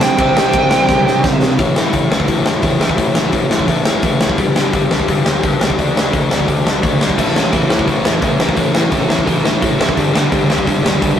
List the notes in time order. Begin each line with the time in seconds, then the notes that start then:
Already playing: C3 G3 C4
0.00 G2 G5, snare
0.17 C2 C3 G3 C4, kick, ride
0.36 C2, snare
0.53 C2, kick, ride
0.70 A1 C3 G3 C4, snare
0.89 C2, kick, snare
1.06 A2, snare
1.24 G1, kick, snare
1.41 G2, snare
1.58 A1 A2 E3 A3, kick, open hi-hat
1.76 A1 A2 E3 A3, snare
1.93 A1 A2 E3 A3, kick, open hi-hat
2.10 D2 A2 E3 A3, snare
2.20 kick
2.28 A1 A2 E3 A3, kick, open hi-hat
2.46 E1 A2 E3 A3, snare
2.62 E2 A2 E3 A3, kick, open hi-hat
2.79 A1 A2 E3 A3, snare
2.89 kick
2.97 A1 A2 E3 A3, kick, open hi-hat
3.14 A1 A2 E3 A3, snare
3.31 A1 A2 E3 A3, kick, open hi-hat
3.50 A1 A2 E3 A3, snare
3.59 kick
3.67 A1 A2 E3 A3, kick, open hi-hat
3.85 G1 A2 E3 A3, snare
4.03 A1 A2 E3 A3, kick, open hi-hat
4.20 C2 A2 E3 A3, snare
4.29 kick
4.38 G1 G2 D3 G3, kick, open hi-hat
4.56 G1 G2 D3 G3, snare
4.73 G1 G2 D3 G3, kick, open hi-hat
4.90 C2 G2 D3 G3, snare
5.00 kick
5.08 G1 G2 D3 G3, kick, open hi-hat
5.25 D2 G2 D3 G3, snare
5.43 D2 G2 D3 G3, kick, open hi-hat
5.61 C#2 G2 D3 G3, snare
5.70 kick
5.78 D2 D3 A3 D4, kick, open hi-hat
5.96 D2 D3 A3 D4, snare
6.13 D2 D3 A3 D4, kick, open hi-hat
6.30 D2 D3 A3 D4, snare
6.39 kick
6.47 D2 D3 A3 D4, kick, open hi-hat
6.64 C2 D3 A3 D4, snare
6.82 D2 D3 A3 D4, kick, open hi-hat
6.99 B1 D3 A3 D4, snare
7.09 kick
7.17 A1 A2 E3 A3, kick, crash
7.34 A1 A2 E3 A3, snare
7.52 A1 A2 E3 A3, kick, open hi-hat
7.69 D2 A2 E3 A3, snare
7.79 kick
7.87 A1 A2 E3 A3, kick, open hi-hat
8.05 E1 A2 E3 A3, snare
8.21 E2 A2 E3 A3, kick, open hi-hat
8.39 A1 A2 E3 A3, snare
8.49 kick
8.56 A1 A2 E3 A3, kick, open hi-hat
8.73 A1 A2 E3 A3, snare
8.91 A1 A2 E3 A3, kick, open hi-hat
9.09 A1 A2 E3 A3, snare
9.19 kick
9.26 A1 A2 E3 A3, kick, open hi-hat
9.43 G1 A2 E3 A3, snare
9.61 A1 A2 E3 A3, kick, open hi-hat
9.79 F#1 A2 E3 A3, snare
9.89 kick
9.95 G1 G2 D3 G3, kick, open hi-hat
10.13 G1 G2 D3 G3, snare
10.31 G1 G2 D3 G3, kick, open hi-hat
10.48 C2 G2 D3 G3, snare
10.58 kick
10.65 G1 G2 D3 G3, kick, open hi-hat
10.82 D2 G2 D3 G3, snare
11.00 D2 G2 D3 G3, kick, open hi-hat